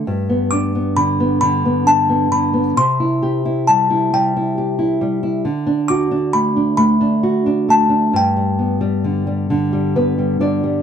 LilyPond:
<<
  \new Staff \with { instrumentName = "Music box" } { \time 6/8 \key g \major \tempo 4. = 45 r8 d'''8 b''8 b''8 a''8 b''8 | c'''4 a''8 g''4 r8 | r8 d'''8 b''8 b''4 a''8 | g''2 r4 | }
  \new Staff \with { instrumentName = "Nylon-string guitar" } { \time 6/8 \key g \major << { r2. | r2. | r2. | r2 b'8 d''8 | } \\ { g,16 b16 d'16 b16 d16 b16 d16 b16 d'16 b16 d16 b16 | c16 e'16 g'16 e'16 g16 e'16 g16 e'16 g'16 e'16 g16 e'16 | d16 d'16 fis'16 d'16 a16 d'16 a16 d'16 fis'16 d'16 a16 d'16 | g,16 g16 b16 g16 d16 g16 d16 g16 b16 g16 d16 g16 | } >> }
>>